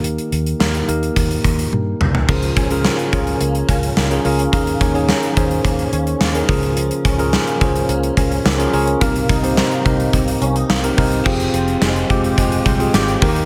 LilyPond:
<<
  \new Staff \with { instrumentName = "Tine electric piano" } { \time 4/4 \key f \minor \tempo 4 = 107 <bes ees' g' bes'>8. r16 <bes ees' g' bes'>8 <bes ees' g' bes'>4.~ <bes ees' g' bes'>16 r8. | <des' f' aes' bes'>8. <des' f' aes' bes'>8. <des' f' aes' bes'>4. r16 <des' f' aes' bes'>16 <des' f' aes' bes'>8 | <des' ees' aes' bes'>8. <des' ees' aes' des''>8. <des' ees' aes' c''>4. r16 <des' ees' aes' bes'>16 <des' f' aes' bes'>8~ | <des' f' aes' bes'>8 r16 <des' f' aes' bes'>8. <des' f' aes' c''>4. r16 <des' f' aes' bes'>16 <des' f' aes' bes'>8 |
<c' ees' g' bes'>8. <c' ees' g' c''>8. <c' ees' g' bes'>4. r16 <c' ees' g' bes'>16 <c' ees' g' bes'>8 | <c' f' g' aes'>4~ <c' f' g' aes'>16 r16 <aes c' f' g'>4 r16 <c' f' g' aes'>8. <bes ees' g' bes'>8 | }
  \new Staff \with { instrumentName = "Tine electric piano" } { \clef bass \time 4/4 \key f \minor ees4 r2. | des4. r2 r8 | ees4. r2 des8~ | des4 r2. |
c4. r2 r8 | r2. r8 ees8 | }
  \new Staff \with { instrumentName = "Overdriven electric guitar" } { \time 4/4 \key f \minor r1 | r1 | r1 | r1 |
r1 | <f c' f'>4 <f c' f'>4 <f c' f'>4. <ees bes ees'>8 | }
  \new Staff \with { instrumentName = "Clean electric guitar" } { \time 4/4 \key f \minor r1 | f8 des'8 bes8 des'8 bes8 des'8 bes8 des'8 | bes8 des'8 bes8 des'8 bes8 des'8 bes8 f8 | f8 des'8 bes8 des'8 bes8 des'8 bes8 des'8 |
bes8 ees'8 bes8 ees'8 bes8 des'16 ees'16 bes8 ees'8 | f8 c'8 aes8 g'8 aes8 c'8 g'8 ees8 | }
  \new Staff \with { instrumentName = "Fingered electric bass" } { \clef bass \time 4/4 \key f \minor ees,8 ees,8 ees,8 ees,8 ees,8 ees,8 g,8 c,8 | des,8 des,8. r16 des,8 des,8 des,8 des,8 des,8 | ees,8 ees,8. r16 ees,8 ees,8 ees,8 ees,8 des,8~ | des,8 des,8. r16 des,8 des,8 des,8 des,8 des,8 |
c,8 c,8. r16 c,8 c,8 c,8 c,8 c,8 | f,,8 f,,8 f,,8 f,,8 f,,8 c,8 aes,,8 ees,8 | }
  \new DrumStaff \with { instrumentName = "Drums" } \drummode { \time 4/4 hh16 hh16 hh16 hh16 sn16 hh16 hh16 hh16 <hh bd>16 hh16 <hh bd>16 hh16 tommh8 toml16 tomfh16 | <cymc bd>16 hh16 <hh bd>16 hh16 sn16 hh16 <hh bd>16 hh16 hh16 hh16 <hh bd>16 hh16 sn16 hh16 hho16 hh16 | <hh bd>16 hh16 <hh bd>16 hh16 sn16 hh16 <hh bd>16 hh16 <hh bd>16 hh16 hh16 hh16 sn16 hh16 <hho bd>16 hh16 | hh16 hh16 <hh bd>16 hh16 sn16 hh16 <hh bd>16 hh16 hh16 hh16 <hh bd>16 hh16 sn16 hh16 hho16 hh16 |
<hh bd>16 hh16 <hh bd>16 hh16 sn16 hh16 <hh bd>16 hh16 <hh bd>16 hh16 hh16 hh16 sn16 hh16 <hho bd>16 hh16 | <cymc bd>16 hh16 hh16 hh16 <sn tamb>16 hh16 <hh bd>16 hh16 <hh bd>16 hh16 <hh bd>16 hh16 <sn tamb>16 hh16 <hho bd>16 hh16 | }
>>